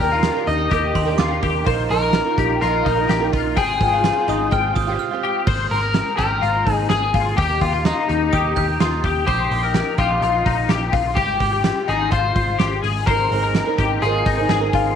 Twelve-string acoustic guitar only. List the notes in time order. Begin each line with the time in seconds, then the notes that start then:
0.00 D#3 D4 G4 A#4
0.34 D4 G4 A#4
0.70 D#3 G4 A#4
1.05 D4 G4 A#4
1.28 D4 G4 A#4
1.64 D#3 D#4 F4 A#4
1.89 D#3 D#4 F4 A#4
2.25 D#4 F4 A#4
2.60 D#3 D#4 F4 A#4
2.97 D#4 F4 A#4
3.21 D#4 F4 A#4
3.57 G#3 C4 F4 G4
3.80 G#3 C4 F4
4.16 C4 F4
4.51 G#3 C4 F4
4.87 C4 F4 G4
5.11 C4 F4 G4
13.08 G#3 C4 D#4 A#4
13.31 G#3 C4 D#4 A#4
13.66 C4 D#4 A#4
14.02 G#3 C4 D#4 A#4
14.38 C4 D#4 A#4
14.61 C4 D#4 A#4